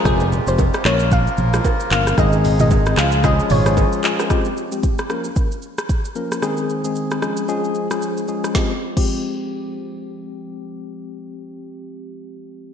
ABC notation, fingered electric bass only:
X:1
M:4/4
L:1/16
Q:"Swing 16ths" 1/4=113
K:Fm
V:1 name="Fingered electric bass" clef=bass
F,,,3 F,,,2 z B,,,4 B,,,2 z2 G,,,2 | A,,,6 D,,4 A,,,3 z3 | z16 | z16 |
z16 | z16 |]